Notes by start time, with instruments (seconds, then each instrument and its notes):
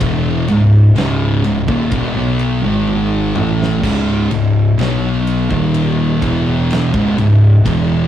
0.00 picked electric bass E1, distorted electric guitar E2 B2 E3, kick, ride
0.48 picked electric bass C#1, distorted electric guitar C#2 G#2, ride
0.96 picked electric bass C#1, distorted electric guitar C#2 G#2 C#3, snare, ride
1.44 picked electric bass C#1, distorted electric guitar C#2 G#2, ride
1.67 picked electric bass D#1, distorted electric guitar D#2 A#2, kick
1.91 picked electric bass E1, distorted electric guitar E2 B2, kick, ride
2.15 picked electric bass B1, distorted electric guitar B2 F#3 B3
2.39 ride
2.63 picked electric bass G#1, distorted electric guitar G#2 D#3 G#3
2.87 high tom
3.35 picked electric bass A1, distorted electric guitar A2 E3 A3, mid tom
3.63 snare
3.82 picked electric bass C#1, distorted electric guitar C#2 G#2 C#3, kick, crash, splash
4.30 picked electric bass C#1, distorted electric guitar C#2 G#2, ride
4.78 picked electric bass B1, distorted electric guitar B2 F#3 B3, snare, ride
5.27 ride
5.50 picked electric bass D#1, distorted electric guitar D#2 A#2 D#3, kick
5.74 ride
6.22 picked electric bass E1, distorted electric guitar E2 B2 E3, kick, ride
6.70 snare, ride
6.94 picked electric bass C#1, distorted electric guitar C#2 G#2, kick
7.16 picked electric bass C#1, distorted electric guitar C#2 G#2, ride
7.65 picked electric bass E1, distorted electric guitar E2 B2 E3, kick, ride